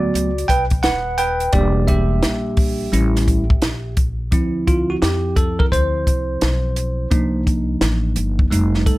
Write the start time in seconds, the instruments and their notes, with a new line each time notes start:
Already playing: upright bass D2, tine electric piano F#3 A3 B3 F#4 D5
0.14 upright bass C#2, closed hi-hat
0.38 closed hi-hat
0.48 upright bass B1, tine electric piano B4 G5, kick, closed hi-hat
0.70 kick, closed hi-hat
0.83 upright bass D#1, tine electric piano B4 F#5, snare, closed hi-hat
1.18 tine electric piano B4 G5, closed hi-hat
1.40 closed hi-hat
1.53 upright bass E1, tine electric piano G3 A#3 D4 G4 D5, kick, closed hi-hat
1.88 tine electric piano G4 E5, kick, closed hi-hat
2.23 upright bass A#1, snare, closed hi-hat
2.57 kick, open hi-hat
2.92 upright bass A1, tine electric piano G3 C#4 E4, closed hi-hat
3.16 snare, closed hi-hat
3.28 kick, closed hi-hat
3.50 kick
3.62 upright bass A#1, snare, closed hi-hat
3.97 kick, closed hi-hat
4.31 upright bass D2, tine electric piano F3 C4 E4, kick, closed hi-hat
4.67 tine electric piano F4, kick, closed hi-hat
4.90 tine electric piano F#4
5.02 upright bass F2, tine electric piano G4, snare, closed hi-hat
5.36 tine electric piano A4, kick, closed hi-hat
5.59 tine electric piano A#4, kick
5.72 upright bass D2, tine electric piano C5, kick, closed hi-hat
6.07 upright bass C2, kick, closed hi-hat
6.41 upright bass B1, snare, closed hi-hat
6.76 closed hi-hat
7.11 upright bass C2, tine electric piano F3 A#3 D4 D#4, kick, closed hi-hat
7.47 kick, closed hi-hat
7.81 upright bass A1, snare, closed hi-hat
8.16 upright bass G1, closed hi-hat
8.39 kick
8.50 upright bass F1, tine electric piano G3 A3 D#4, closed hi-hat
8.74 snare
8.86 upright bass A1, tine electric piano A4, kick, closed hi-hat